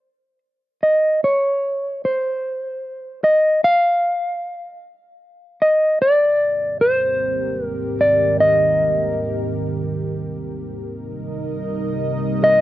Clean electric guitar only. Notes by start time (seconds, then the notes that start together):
Already playing: C5
0.83 D#5
1.24 C#5
2.05 C5
3.24 D#5
3.64 F5
5.62 D#5
6.02 D5
6.81 C5
7.65 A#4
8.01 D5
8.40 D#5
12.44 D#5